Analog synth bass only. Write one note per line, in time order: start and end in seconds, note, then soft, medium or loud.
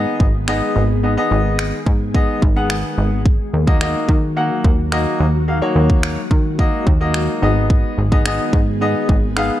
0.20 0.62 G#1 medium
0.76 1.18 G#1 medium
1.31 1.73 G#1 medium
1.86 2.28 G#2 medium
2.42 2.84 G#1 loud
2.98 3.40 G#1 medium
3.53 3.95 D#2 medium
4.09 4.51 D#3 medium
4.64 5.06 D#2 loud
5.20 5.62 D#2 medium
5.75 6.17 D#2 medium
6.31 6.73 D#3 medium
6.87 7.29 D#2 loud
7.42 7.84 G#1 medium
7.98 8.40 G#1 medium
8.53 8.95 G#2 medium
9.09 9.51 G#1 loud